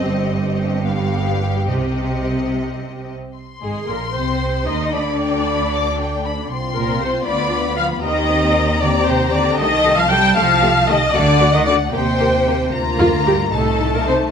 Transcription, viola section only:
0.00 0.82 C4 medium
0.85 1.65 B3 medium
1.69 3.11 C4 soft
3.62 3.86 G#4 medium
3.89 4.15 A#4 soft
4.15 4.66 C5 medium
4.67 4.93 D#5 medium
4.94 6.50 D5 medium
6.76 6.99 A#4 medium
7.01 7.27 C5 medium
7.26 7.77 D5 medium
7.77 7.85 F5 medium
8.03 8.79 D#5 medium
8.81 9.07 D5 medium
9.06 9.33 C5 medium
9.32 9.58 D5 medium
9.58 9.96 D#5 medium
9.98 10.11 F5 medium
10.09 10.36 G5 medium
10.36 10.87 F5 medium
10.88 11.15 D#5 medium
11.14 11.54 D5 medium
11.54 11.67 D#5 medium
11.66 11.74 D5 medium
11.92 12.71 C5 medium
12.99 13.07 F4 medium
13.26 13.34 G4 medium
13.53 13.93 A4 medium
13.95 14.09 A#4 medium
14.07 14.15 C5 medium

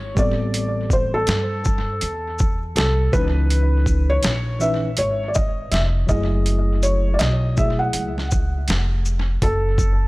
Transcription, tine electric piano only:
0.15 1.36 G3 medium
0.15 1.36 B3 medium
0.15 1.37 C4 medium
0.15 1.37 A4 medium
3.12 4.32 E3 medium
3.12 4.33 C#4 medium
3.12 4.33 D#4 medium
3.12 4.34 B4 medium
4.60 4.88 E3 medium
4.60 4.89 C#4 medium
4.60 4.89 D#4 medium
4.60 4.90 B4 medium
6.07 7.28 F#3 medium
6.07 7.29 A3 medium
6.07 7.29 E4 medium
6.07 7.30 G#4 medium
7.55 8.11 F#3 medium
7.55 8.12 A3 medium
7.55 8.12 E4 medium
7.55 8.13 G#4 medium

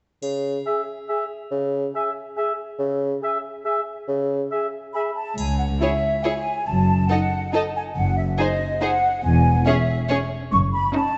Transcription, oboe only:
0.66 0.82 E5 soft
1.09 1.24 E5 soft
1.95 2.11 E5 soft
2.37 2.53 E5 soft
3.23 3.39 E5 soft
3.65 3.81 E5 soft
4.51 4.67 E5 soft
4.96 5.11 E5 soft

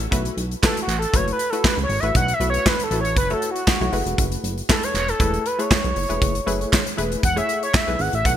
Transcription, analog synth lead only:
0.65 0.80 A4 medium
0.82 0.97 F#4 medium
0.99 1.17 A4 medium
1.15 1.31 C#5 medium
1.32 1.51 B4 medium
1.50 1.66 A4 medium
1.67 1.74 B4 medium
1.83 2.01 C#5 loud
2.00 2.16 E5 medium
2.17 2.35 F#5 loud
2.33 2.49 E5 loud
2.50 2.69 C#5 loud
2.67 2.83 B4 loud
2.84 2.99 A4 medium
3.00 3.16 C#5 loud
3.17 3.33 B4 loud
3.34 3.49 A4 medium
3.51 4.23 F#4 medium
4.70 4.85 A4 medium
4.84 4.95 C#5 medium
4.95 5.10 C#5 loud
5.09 5.48 A4 loud
5.46 5.61 B4 loud
5.60 6.87 C#5 loud
7.24 7.36 F#5 loud
7.38 7.61 E5 loud
7.63 7.77 C#5 medium
7.75 8.02 E5 medium
8.01 8.14 F#5 medium
8.15 8.25 E5 medium
8.26 8.32 F#5 loud

